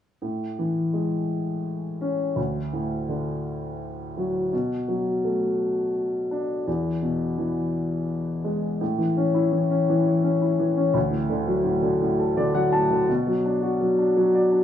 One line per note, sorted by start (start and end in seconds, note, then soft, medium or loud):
0.22 2.33 A2 soft
0.59 1.98 E3 soft
0.93 2.33 G#3 soft
2.01 2.36 C#4 soft
2.36 4.48 D2 soft
2.73 4.12 A2 soft
3.09 4.48 D3 soft
4.17 4.52 F#3 soft
4.53 6.63 B2 soft
4.88 6.27 F#3 soft
5.24 6.63 A3 soft
6.31 6.66 D4 soft
6.67 8.77 E2 soft
7.02 8.41 B2 soft
7.38 8.77 E3 soft
8.44 8.80 G#3 soft
8.81 10.91 A2 soft
8.98 9.50 E3 soft
9.17 9.69 C#4 soft
9.34 10.40 E4 soft
9.52 9.88 E3 soft
9.71 10.22 C#4 soft
9.89 10.58 E3 soft
10.06 10.93 C#5 soft
10.23 10.75 C#4 soft
10.42 10.94 E4 soft
10.59 10.94 E3 soft
10.77 10.95 C#4 soft
10.94 13.05 D2 soft
11.11 11.63 A2 soft
11.29 11.81 D3 soft
11.47 12.53 F#3 soft
11.64 12.00 A2 soft
11.82 12.35 D3 soft
12.02 12.71 A2 soft
12.19 13.06 A4 soft
12.37 12.89 D3 soft
12.37 12.54 D5 medium
12.54 13.07 F#3 soft
12.54 12.72 F#5 medium
12.72 13.08 A2 soft
12.72 13.06 A5 medium
12.90 13.08 D3 soft
13.09 14.64 B2 medium
13.27 13.79 F#3 soft
13.46 13.97 D4 soft
13.63 14.64 F#4 soft
13.81 14.15 F#3 soft
13.99 14.50 D4 soft
14.17 14.64 F#3 soft
14.35 14.64 D5 soft
14.52 14.64 D4 soft